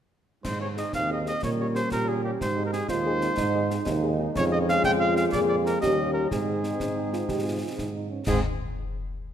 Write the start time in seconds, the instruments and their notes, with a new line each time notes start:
0.44 tuba G#2, trombone section G#3 D#4, cornet C5, concert bass drum, snare, crash
0.60 french horn section C4 D#4 G#4, cornet C#5
0.76 french horn section C4 D#4 G#4, cornet D#5, snare
0.93 tuba D#2, euphonium C4, cornet F5, concert bass drum, snare
1.09 french horn section C4 D#4 G#4, cornet D#5
1.26 french horn section C4 D#4 G#4, cornet D#5, snare
1.42 tuba A#2, trombone section G3 C#4, euphonium A#3, cornet C#5, concert bass drum, snare
1.58 french horn section A#3 C#4 G4, cornet C#5
1.75 french horn section A#3 C#4 G4, cornet C5, snare
1.91 tuba A#2, euphonium G4, cornet A#4, concert bass drum, snare
2.07 french horn section A#3 C#4 G4, cornet G#4
2.23 french horn section A#3 C#4 G4, cornet G4
2.40 tuba G#2, trombone section G#3 D#4, cornet C5, concert bass drum, snare
2.56 french horn section C4 D#4 G#4
2.66 cornet A#4
2.72 french horn section C4 D#4 G#4, cornet G#4, snare
2.88 tuba D#2, euphonium F4, cornet C5, concert bass drum, snare
3.05 french horn section C4 D#4 G#4
3.21 french horn section C4 D#4 G#4, snare
3.37 tuba G#2, euphonium D#4, concert bass drum, snare
3.54 french horn section C4 D#4 G#4
3.69 french horn section C4 D#4 G#4, snare
3.86 tuba D#2, euphonium D#4, concert bass drum, snare
4.03 french horn section C4 D#4 G#4
4.19 french horn section C4 D#4 G#4
4.35 tuba F2, french horn section G#3 F4 G#4, trombone section G#3 C#4, cornet C#5, concert bass drum, snare, crash
4.52 cornet D#5
4.69 cornet F5, snare
4.84 tuba F2, euphonium F4, cornet G5, concert bass drum, snare
5.00 cornet F5
5.17 cornet F5, snare
5.32 tuba F2, trombone section A#3, french horn section A#3 F4 G#4, cornet D5, concert bass drum, snare
5.48 cornet D5
5.66 cornet A#4, snare
5.81 tuba D#2, trombone section G3 C#4, french horn section A#3 C#4 G4, euphonium G4, cornet D#5, concert bass drum, snare
6.14 cornet A#4
6.31 tuba G#2, french horn section G#3 C4 D#4, trombone section G#3 C4, cornet G#4, euphonium G#4, concert bass drum, snare
6.64 snare
6.80 tuba G#2, euphonium C#4, concert bass drum, snare
6.96 euphonium D#4
7.13 euphonium F4, snare
7.28 tuba G#2, euphonium G4, concert bass drum, snare
7.45 euphonium F4
7.62 euphonium F4
7.77 tuba G#2, euphonium D#4, concert bass drum, snare
7.95 euphonium D#4
8.10 euphonium C#4
8.27 tuba G#2, french horn section G#3 C4 D#4, trombone section G#3 C4, cornet G#4, concert bass drum, snare, crash